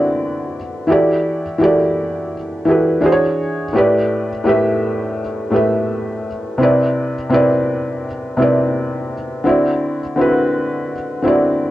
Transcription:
felt piano
Already playing: D3 C4 E4 F#4 B4 D5
0.87 E3 E4 F#4 G4
0.91 A4 D5
1.58 E3 E4 F#4 G4
1.63 A4 D5
2.65 E3 E4 F#4 G4
2.69 A4 B4
3.00 E3 D4 F#4 G#4
3.06 C5
3.12 C#5
3.73 A2 A3 G4
3.77 B4 D5
4.44 A2 A3 G4 B4
4.49 E5
5.50 A2 A3 G4 B4
5.56 E5
6.58 C3 C4 E4
6.62 B4 D5
7.29 C3 C4 E4 B4
7.34 D5
8.37 C3 C4 E4 B4
8.42 D5
9.44 D3 C4 E4 F#4
9.49 D5
10.16 D3 C4 E4 F#4
10.21 B4
11.22 D3 C4 E4 F#4
11.28 D5

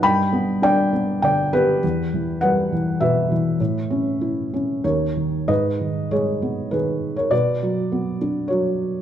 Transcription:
felt piano
0.02 G2 G5 B5
0.33 B3
0.62 D4 D5 G5
0.93 B3
1.22 D3 D5 G5
1.53 B3 G4 B4
1.83 E2
2.14 E3
2.41 G3 B4 F#5
2.72 E3
3.00 B2 B4 E5
3.31 E3
3.60 A2
3.90 C#4
4.21 E4
4.54 C#4
4.84 D#2 A#4 C#5
5.17 D#3
5.48 G#2 B4 D#5
5.81 D#3
6.11 G#3 G#4 C#5
6.42 B3
6.71 D#3 G#4 B4
7.16 A#4 C#5
7.31 B2 B4 D5
7.63 F#3
7.92 B3
8.21 D4
8.48 F#3 F#4 C#5

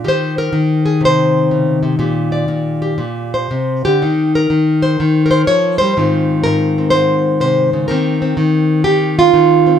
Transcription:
nylon-string guitar
0.04 D#3 G4
0.08 C5
0.38 A#4
0.53 D#3
0.86 G#4
1.01 C3
1.05 C5
1.51 C#3
1.83 C3
1.99 A#2 G4
2.32 D5
2.48 A#2
2.82 G4
2.98 A#2
3.34 C5
3.51 C3
3.85 D3 G4
4.02 D#3 D#4
4.35 A#4
4.50 D#3
4.83 C5
5.00 D#3
5.26 A#4
5.31 C5
5.47 F3 C#5
5.78 G3 C5
5.97 G#2 D#3 C4 F4
6.44 G#2 A#4
6.78 C4
6.90 G#2 C5
7.40 C3 C5
7.73 C#3
7.88 D#3 A#3 C4 A#4
8.22 C4
8.37 D#3
8.84 D#3 G4
9.19 F4
9.34 D#3
9.66 C4

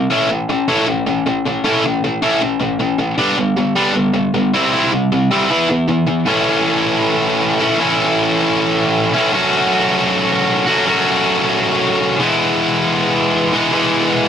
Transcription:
distorted electric guitar
0.10 A3 C#4 E4
0.30 A3 C#4
0.49 A3 C#4
0.68 A3 C#4 E4
0.87 A3 C#4
1.06 A3 C#4
1.26 A3 C#4
1.45 A3 C#4
1.64 A3 C#4 E4
1.85 A3 C#4
2.04 A3 C#4
2.22 A3 C#4 E4
2.41 A3 C#4
2.59 A3 C#4
2.79 A3 C#4
2.98 A3 C#4
3.18 G3 B3 D4
3.38 G3 B3
3.57 G3 B3
3.76 G3 B3 D4
3.94 G3 B3
4.14 G3 B3
4.34 G3 B3
4.53 G3 C4 E4
4.72 G3 C4 E4
4.92 G3 C4
5.12 G3 C4
5.31 G3 C4 E4
5.49 E3 B3 E4
5.69 E3 B3
5.88 E3 B3
6.07 E3 B3
6.26 A2 E3 A3 C#4 E4
7.59 A2 E3 A3 C#4 E4
7.78 A2 E3 A3 C#4 E4
9.14 A2 E3 A3 C#4 E4
9.32 F#3 A3 C#4 F#4
10.66 F#3 A3 C#4 F#4
10.85 F#3 A3 C#4 F#4
12.19 E3 G#3 B3 E4
13.52 E3 G#3 B3 E4
13.72 E3 G#3 B3 E4

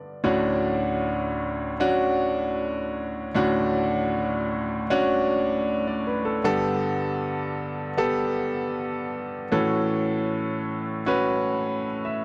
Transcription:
grand piano
Already playing: G2 D3 B3 D5
0.24 D2 A2 C#4 D4 F#4
1.80 C#4 D4 F#4
3.35 D2 A2 C#4 D4 F#4
4.90 C#4 D4 F#4
5.87 D5
6.07 B4
6.25 A4
6.44 G2 D3 B3 G4 A4
7.98 B3 G4 A4
9.52 A2 E3 C#4 F#4 A4
11.06 C#4 F#4 B4
12.05 E5

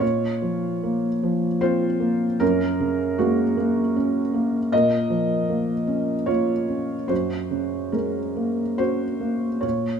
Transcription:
felt piano
0.00 A#2 F4 C#5
0.42 F3
0.83 A#3
1.23 F3
1.61 C4 F4 C5
2.00 A#3
2.40 F#2 C#4 A#4
2.80 C#3
3.18 G#3 A#3 F#4
3.57 A#3
3.96 C#4
4.34 A#3
4.72 A#2 A#4 D#5
5.10 F3
5.50 A#3
5.87 C#4
6.26 A#3 F4 C#5
6.68 C#4
7.08 F#2 F#4 C5
7.51 C#3
7.92 G#3 C#4 A#4
8.36 A#3
8.78 C#4 F#4 C5
9.21 A#3
9.61 A#2 F4 C#5

